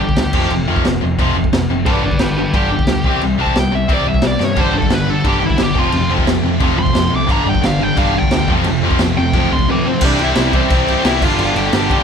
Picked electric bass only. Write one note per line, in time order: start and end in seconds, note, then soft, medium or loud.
0.18 0.29 D2 medium
0.34 0.45 F1 medium
0.52 0.63 F1 medium
0.69 0.80 F1 medium
0.86 0.97 F1 loud
1.03 1.14 F1 medium
1.19 1.30 F1 medium
1.35 1.46 F1 medium
1.52 1.63 F1 medium
1.70 1.87 F#1 medium
1.87 1.98 G1 medium
2.04 2.15 G1 medium
2.21 2.43 G1 loud
2.54 2.76 G1 medium
2.88 2.99 D2 medium
3.04 3.16 C2 medium
3.22 3.33 C2 medium
3.38 3.49 C2 medium
3.56 3.66 C2 medium
3.73 3.83 C2 medium
3.89 4.00 C2 medium
4.07 4.18 C2 medium
4.24 4.34 C2 medium
4.40 4.58 G2 medium
4.56 4.68 G1 medium
4.73 4.85 G1 medium
4.90 5.13 G1 medium
5.25 5.47 G1 medium
5.59 5.70 G1 medium
5.76 5.87 F1 medium
5.93 6.04 F1 loud
6.11 6.22 F1 medium
6.27 6.38 F1 medium
6.44 6.55 F1 medium
6.61 6.72 F1 medium
6.78 6.89 F1 medium
6.95 7.06 F1 medium
7.12 7.23 C2 medium
7.29 7.40 G1 medium
7.46 7.57 G1 medium
7.64 7.86 G1 loud
7.97 8.19 G1 medium
8.32 8.43 D2 loud
8.48 8.59 F1 medium
8.66 8.77 F1 loud
8.83 8.94 F1 medium
9.01 9.11 F1 loud
9.18 9.29 F1 medium
9.34 9.45 F1 loud
9.52 9.63 D2 medium
10.02 10.13 C2 loud
10.19 10.30 C2 medium
10.37 10.58 C2 loud
10.71 10.92 C2 loud
11.05 11.23 C2 medium
11.21 11.32 G1 medium
11.39 11.50 G1 loud
11.56 11.67 G1 medium
11.73 11.94 G1 loud